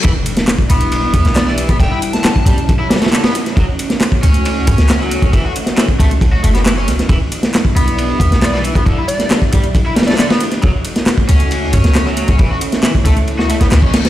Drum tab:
RD |x---x---x---x---x---x---x---x---|x---x---x---x---x---xxxxx-x-x---|x---x---x---x---x---x---x---x---|x---x---x---x---x---x---x---x---|
HH |x---x-x-x---x-x-x---x-x-x---x-x-|x---x-x-x---x-x-x---x-x-x---x-x-|x---x-x-x---x-x-x---x-x-x---x-x-|x---x-x-x---x-x-x---x-x-x---x-x-|
CP |--------x---------------x-------|--------x---------------x-------|--------x---------------x-------|--------x---------------x-------|
SD |------o-o-------------o-o-o-----|------o-o-----------ooooo-o-o-o-|------o-o-------------o-o-o-----|------o-o-------------o-o---o-o-|
BD |o---------o---------o---------o-|o---------o-o---o---------------|o---------o---------o---------o-|o---------o-o---o---------------|

RD |x---x---x---x---x---x---x---x---|x---x---x---x---x---xxxxx-x-x---|x---x---x---x---x---x---x---x---|x---x---x---x---x---x---x---x-x-|
HH |x---x-x-x---x-x-x---x-x-x---x-x-|x---x-x-x---x-x-x---x-x-x---x-x-|x---x-x-x---x-x-x---x-x-x---x-x-|x---x-x-x---x-x-x---x-x-x---x-x-|
CP |--------x---------------x-------|--------x---------------x-------|--------x---------------x-------|--------x---------------x-------|
SD |------o-o-------------o-o-o-----|------o-o-----------ooooo-o-o-o-|------o-o-------------o-o-o-----|------o-o---------o---o-o---o-o-|
BD |o---------o---------o---------o-|o---------o-o---o---------------|o---------o---------o---------o-|o---------o-o-------------o-----|